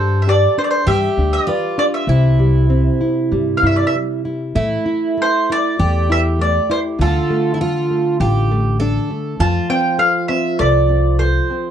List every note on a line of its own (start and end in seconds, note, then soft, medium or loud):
0.00 0.45 G2 loud
0.00 0.84 G3 medium
0.00 0.26 D4 medium
0.00 0.83 A4 loud
0.00 0.23 C5 medium
0.22 0.28 E5 medium
0.28 0.56 G4 medium
0.28 0.58 D5 medium
0.58 0.86 D4 medium
0.58 0.61 C5 medium
0.64 0.70 D5 medium
0.71 0.86 C5 medium
0.86 1.06 G2 medium
0.86 2.05 G3 medium
0.86 1.49 G4 medium
0.86 1.33 E5 medium
1.17 1.37 D2 medium
1.17 1.47 D4 medium
1.33 1.78 D5 medium
1.47 2.09 F4 medium
1.47 1.77 B4 soft
1.78 2.07 D4 medium
1.78 1.84 D5 medium
1.94 3.53 E5 medium
2.07 2.87 C2 medium
2.07 4.52 C3 medium
2.07 4.21 E4 medium
2.39 2.68 G3 medium
2.70 2.99 C4 medium
3.01 3.31 E4 soft
3.32 3.52 G2 medium
3.32 3.62 G3 medium
3.57 3.66 F5 medium
3.62 3.83 G2 medium
3.62 3.93 E4 soft
3.67 3.75 E5 medium
3.76 3.85 D5 medium
3.87 3.95 E5 medium
3.95 4.24 G3 soft
4.25 4.55 E4 medium
4.55 4.75 A2 medium
4.55 5.16 A3 medium
4.55 5.75 E4 medium
4.86 5.16 E4 soft
5.17 5.48 A3 medium
5.22 5.52 C5 medium
5.50 5.79 E4 soft
5.50 6.13 D5 medium
5.79 6.58 E2 medium
5.79 6.08 A3 medium
5.79 7.01 G4 medium
6.10 6.39 E4 soft
6.10 6.20 E5 medium
6.39 6.68 A3 soft
6.39 6.71 D5 medium
6.70 6.99 E4 soft
6.70 6.79 C5 medium
6.99 7.19 D2 medium
6.99 9.34 D3 medium
6.99 7.54 F4 medium
6.99 8.17 A4 medium
7.30 7.59 A3 medium
7.54 7.60 E4 medium
7.61 8.16 F4 medium
7.61 7.90 F4 soft
7.91 8.19 A3 soft
8.20 8.97 A1 loud
8.20 8.49 F4 medium
8.20 8.79 G4 medium
8.51 8.79 A3 medium
8.80 9.09 D4 medium
8.80 9.41 A4 medium
9.10 9.38 A3 soft
9.39 9.59 F2 medium
9.39 11.71 F3 medium
9.39 11.71 F4 medium
9.39 9.67 A5 medium
9.70 9.98 C4 medium
9.70 9.97 G5 medium
9.99 10.28 A4 medium
9.99 10.28 F5 medium
10.28 10.58 C4 soft
10.28 10.59 E5 medium
10.59 11.38 C2 medium
10.59 10.88 A4 medium
10.59 11.19 D5 medium
10.89 11.18 C4 soft
11.19 11.48 A4 medium
11.19 11.71 C5 medium
11.50 11.71 C4 soft